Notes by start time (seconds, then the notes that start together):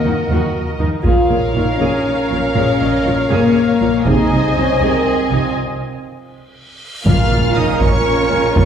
Already playing: A#3 F#4 A#4 D#5
0.04 D#2 D#3 D#4
0.28 D#2 D#3 F#4
0.79 D#2 D#3 D#4
1.03 A#1 A#2 F4 G#4 A#4 C#5 F5, taiko
1.29 A#1 A#2 G#4
1.54 A#1 A#2 D#4 F4
1.78 A#1 A#2 C#4 G#4
2.29 A#1 A#2 F4
2.54 A#1 A#2 C#4 G#4 C#5
2.79 A#1 A#2 G#4 D#5
3.05 A#1 A#2 F4 C#5
3.30 A#1 A#2 A#3 G#4
3.80 A#1 A#2 F4
4.05 C2 C3 D#4 G#4 C5 D#5 G#5, taiko
4.30 C2 C3 G#4
4.56 C2 C3 C#4 D#4
4.80 C2 C3 C4 G#4 A#4
5.06 G#4
5.30 C2 C3 D#4 F4
5.55 cymbal swell
7.05 A#1 A#2 G#3 F4 A#4 C#5 F5 G#5 F6, taiko, impact
7.31 A#1 A#2
7.55 A#1 A#2 D#4 D#5 D#6
7.80 A#1 A#2 C#4 C#5 C#6, taiko
8.31 A#1 A#2
8.56 A#1 A#2 C#4 C#5 C#6, taiko